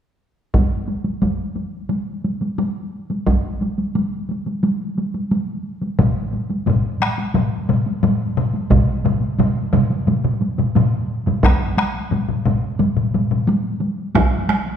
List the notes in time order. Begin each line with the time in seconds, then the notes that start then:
0.54 taiko, taiko high
0.88 taiko high
1.04 taiko high
1.22 taiko, taiko high
1.56 taiko high
1.89 taiko high
2.24 taiko high
2.41 taiko high
2.58 taiko high
3.10 taiko high
3.27 taiko, taiko high
3.61 taiko high
3.78 taiko high
3.95 taiko high
4.29 taiko high
4.46 taiko high
4.63 taiko high
4.98 taiko high
5.14 taiko high
5.31 taiko high
5.82 taiko high
5.99 taiko, taiko low-mid, taiko high
6.33 taiko high
6.50 taiko high
6.66 taiko, taiko low-mid, taiko high
7.00 taiko rim, taiko high
7.18 taiko high
7.34 taiko low-mid, taiko high
7.69 taiko low-mid, taiko high
7.86 taiko high
8.03 taiko low-mid, taiko high
8.37 taiko low-mid
8.54 taiko high
8.70 taiko, taiko low-mid, taiko mid, taiko high
9.04 taiko low-mid, taiko mid, taiko high
9.21 taiko high
9.39 taiko low-mid, taiko mid, taiko high
9.73 taiko low-mid, taiko mid, taiko high
9.90 taiko high
10.07 taiko low-mid, taiko mid, taiko high
10.24 taiko low-mid, taiko mid
10.42 taiko high
10.58 taiko low-mid, taiko mid, taiko high
10.75 taiko low-mid, taiko mid, taiko high
11.26 taiko low-mid, taiko mid, taiko high
11.43 taiko rim, taiko, taiko high
11.60 taiko high
11.77 taiko rim, taiko high
11.95 taiko high
12.11 taiko low-mid, taiko high
12.29 taiko low-mid
12.46 taiko, taiko low-mid, taiko high
12.80 taiko low-mid, taiko high
12.97 taiko low-mid, taiko high
13.14 taiko low-mid, taiko high
13.31 taiko low-mid, taiko high
13.47 taiko high
13.64 taiko high
13.81 taiko high
13.98 taiko high
14.15 taiko rim, taiko, taiko high
14.32 taiko high
14.49 taiko rim, taiko high
14.66 taiko high